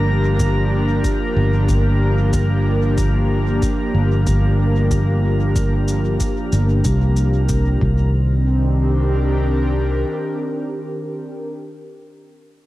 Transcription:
Already playing: fingered electric bass G1, analog synth pad F3 A#3 D4 G4 A#4, synth texture A#4 A#5
0.40 kick, shaker
1.04 kick, shaker
1.36 fingered electric bass G1
1.69 kick, shaker
2.33 kick, shaker
2.98 kick, shaker
3.62 kick, shaker
3.94 fingered electric bass G1
4.27 kick, shaker
4.91 kick, shaker
5.56 kick, shaker
5.88 shaker
6.20 kick, shaker
6.52 fingered electric bass G1, shaker
6.84 fingered electric bass C2, kick, shaker
7.17 shaker
7.49 kick, shaker
7.81 fingered electric bass C2, analog synth pad D#3, kick
7.92 analog synth pad C4
8.34 analog synth pad D4
8.43 analog synth pad G4
8.54 analog synth pad A#4

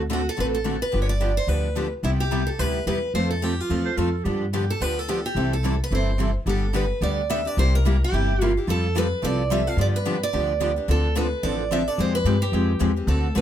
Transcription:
Already playing: upright bass D2
0.10 steel-string acoustic guitar D3 A3 C4 F#4 A4
0.29 steel-string acoustic guitar A4
0.37 upright bass A1, steel-string acoustic guitar D3 A3 C4 F#4 A4 B4
0.55 steel-string acoustic guitar A4
0.64 steel-string acoustic guitar D3 A3 C4 F#4 A4
0.82 steel-string acoustic guitar B4
0.92 upright bass G1, steel-string acoustic guitar D3 F3 B3 D4 G4
1.02 steel-string acoustic guitar C#5
1.09 steel-string acoustic guitar D5
1.20 steel-string acoustic guitar D3 F3 B3 D4 G4
1.37 steel-string acoustic guitar C5
1.47 upright bass D2, steel-string acoustic guitar D3 F3 B3 D4 G4 B4
1.76 steel-string acoustic guitar D3 F3 B3 D4 G4
2.03 upright bass C2, steel-string acoustic guitar C3 G3 B3 E4 G4
2.20 steel-string acoustic guitar G4
2.31 steel-string acoustic guitar C3 G3 B3 E4 G4
2.47 steel-string acoustic guitar A4
2.59 upright bass D2, steel-string acoustic guitar C3 G3 B3 E4 G4 B4
2.86 upright bass E2, steel-string acoustic guitar C3 G3 B3 E4 G4 B4
3.14 upright bass F2, steel-string acoustic guitar F3 A3 C4 F4 A4 C5
3.31 steel-string acoustic guitar A4
3.42 steel-string acoustic guitar F3 A3 C4 F4 G4 A4
3.60 steel-string acoustic guitar F4
3.69 upright bass E2, steel-string acoustic guitar F3 A3 C4 F4 A4
3.85 clarinet C5
3.97 upright bass F2, steel-string acoustic guitar F3 A3 C4 F4 A4, clarinet A4
4.24 upright bass G2, steel-string acoustic guitar D3 F3 B3 D4 G4, clarinet G4
4.53 steel-string acoustic guitar D3 F3 B3 D4 G4
4.70 steel-string acoustic guitar A4
4.80 upright bass D2, steel-string acoustic guitar D3 F3 B3 D4 G4 B4
4.99 steel-string acoustic guitar A4
5.08 steel-string acoustic guitar D3 F3 B3 D4 G4
5.26 steel-string acoustic guitar G4
5.35 upright bass C2, steel-string acoustic guitar C3 E3 G3 C4 E4 A4
5.53 steel-string acoustic guitar A4
5.64 steel-string acoustic guitar C3 E3 G3 C4 E4 A4
5.84 steel-string acoustic guitar B4
5.91 upright bass G1, steel-string acoustic guitar C3 E3 G3 C4 E4 A4
5.95 steel-string acoustic guitar C5
6.20 steel-string acoustic guitar C3 E3 G3 C4 E4 A4
6.46 upright bass G1, steel-string acoustic guitar D3 G3 B3 D4 G4 A4
6.74 steel-string acoustic guitar D3 G3 B3 D4 G4 B4
7.01 upright bass D2, steel-string acoustic guitar D3 G3 B3 D4 G4 D5
7.30 steel-string acoustic guitar D3 G3 B3 D4 G4 E5
7.45 steel-string acoustic guitar B3 D4 G4 D5
7.57 upright bass C2, steel-string acoustic guitar C3 G3 A#3 E4 G4 C5
7.75 steel-string acoustic guitar A#4
7.86 steel-string acoustic guitar C3 G3 A#3 E4 G4
8.04 steel-string acoustic guitar G4
8.12 upright bass G1, steel-string acoustic guitar C3 G3 A#3 E4 G4
8.41 steel-string acoustic guitar C3 G3 A#3 E4 G4
8.57 steel-string acoustic guitar A#3 E4 G4
8.67 upright bass F2, steel-string acoustic guitar F3 G3 C4 F4 A4
8.96 steel-string acoustic guitar F3 G3 C4 F4 A4 B4
9.23 upright bass C2, steel-string acoustic guitar F3 G3 C4 F4 A4 D5
9.51 steel-string acoustic guitar F3 G3 C4 F4 A4 E5
9.67 steel-string acoustic guitar C4 F4 A4 F5
9.77 upright bass G2, steel-string acoustic guitar D3 F3 B3 D4 G4
9.81 steel-string acoustic guitar D5
9.96 steel-string acoustic guitar B4
10.05 steel-string acoustic guitar D3 F3 B3 D4 G4
10.23 steel-string acoustic guitar D5
10.33 upright bass D2, steel-string acoustic guitar D3 F3 B3 D4 G4
10.60 steel-string acoustic guitar D3 F3 B3 D4 G4
10.76 steel-string acoustic guitar B3 D4 G4
10.88 upright bass D2, steel-string acoustic guitar D3 F3 C4 D4 A4
11.15 steel-string acoustic guitar D3 F3 C4 D4 A4 B4
11.43 upright bass A1, steel-string acoustic guitar D3 F3 C4 D4 A4 D5
11.72 steel-string acoustic guitar D3 F3 C4 D4 A4 E5
11.88 steel-string acoustic guitar C4 D4 A4 D5
11.98 upright bass F2, steel-string acoustic guitar F3 G#3 C4 G4 C5
12.15 steel-string acoustic guitar B4
12.24 upright bass G2, steel-string acoustic guitar F3 G#3 C4 G4
12.42 steel-string acoustic guitar G4
12.52 upright bass F2, steel-string acoustic guitar F3 G#3 C4 G4
12.80 upright bass E2, steel-string acoustic guitar F3 G#3 C4 G4
12.96 steel-string acoustic guitar G#3 C4 G4
13.07 upright bass D2, steel-string acoustic guitar D3 A3 C4 F#4 A4
13.35 upright bass C2, steel-string acoustic guitar D3 A3 C4 F#4 A4 B4

